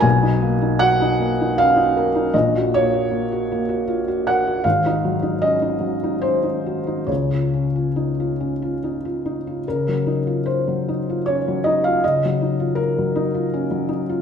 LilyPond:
\new Staff \with { instrumentName = "Felt piano" } { \time 3/4 \key ees \dorian \tempo 4 = 77 << { aes''4 ges''4 f''4 | ees''8 des''2 ges''8 | f''4 ees''4 c''4 | des''2 r4 |
bes'4 c''4 des''8 ees''16 f''16 | ees''4 bes'4. r8 | } \\ { <ces, ces>16 ees'16 bes16 ees'16 ges'16 ees'16 bes16 ees'16 des'16 ees'16 bes'16 ees'16 | <bes,, bes,>16 ges'16 bes16 ges'16 bes16 ges'16 bes16 ges'16 f'16 ges'16 bes'16 ges'16 | <aes,, aes,>16 ees'16 ges16 ees'16 des'16 ees'16 ges16 ees'16 des'16 ees'16 ges'16 ees'16 | <des, des>16 f'16 des'16 f'16 ees'16 f'16 des'16 f'16 ees'16 f'16 ees'16 f'16 |
des16 ges16 ees'16 f'8 ges16 ees'16 f'16 des'16 ges16 ees'16 f'16 | des16 ges16 ees'16 f'8 ges16 ees'16 f'16 des'16 ges16 ees'16 f'16 | } >> }